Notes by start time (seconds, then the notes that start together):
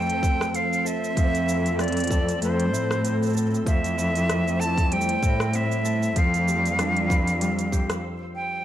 Already playing: F2 F3 A3 C4 D4 E4 A4 C5 G5 E6
0.01 cabasa
0.06 closed hi-hat, cabasa
0.23 kick, cabasa
0.41 cross-stick, cabasa
0.53 C4 F5, closed hi-hat, cabasa
0.73 cabasa
0.85 A4 E5, cabasa
1.04 cabasa
1.16 F2 F3, kick, closed hi-hat, cabasa
1.35 closed hi-hat, cabasa
1.48 E4, cabasa
1.66 closed hi-hat, cabasa
1.79 C4 D5, cross-stick, closed hi-hat, cabasa
1.84 closed hi-hat
1.88 closed hi-hat
1.92 closed hi-hat
1.97 closed hi-hat, cabasa
2.00 closed hi-hat
2.04 closed hi-hat
2.07 A4, kick, closed hi-hat, cabasa
2.29 closed hi-hat, cabasa
2.42 F2 A3 C5, closed hi-hat, cabasa
2.60 closed hi-hat
2.72 A2 E4, cabasa
2.91 cross-stick, cabasa
3.04 C4, closed hi-hat, cabasa
3.23 cabasa
3.26 cabasa
3.30 cabasa
3.33 A4, cabasa
3.37 cabasa
3.41 cabasa
3.50 cabasa
3.54 cabasa
3.66 F2 F3 A3 E4 C5 E5, kick, closed hi-hat, cabasa
3.84 closed hi-hat, cabasa
3.97 E4, cabasa
4.16 closed hi-hat, cabasa
4.28 C4, cross-stick, closed hi-hat, cabasa
4.48 cabasa
4.60 A4 A5, cabasa
4.77 kick, closed hi-hat, cabasa
4.91 G3 G5, closed hi-hat
5.01 cabasa
5.09 closed hi-hat
5.23 A2 E4, kick, cabasa
5.40 cross-stick, cabasa
5.53 C4 E5, closed hi-hat, cabasa
5.72 cabasa
5.85 A4, cabasa
6.03 cabasa
6.16 F2 F3 G3 F4 D5 F5, kick, closed hi-hat, cabasa
6.34 closed hi-hat, cabasa
6.48 G4, cabasa
6.66 closed hi-hat, cabasa
6.79 D4, cross-stick, closed hi-hat, cabasa
6.97 closed hi-hat
7.10 B4, kick, cabasa
7.27 closed hi-hat, cabasa
7.41 G3, closed hi-hat, cabasa
7.59 closed hi-hat, cabasa
7.72 G4, kick, cabasa
7.90 cross-stick, closed hi-hat, cabasa
8.35 G5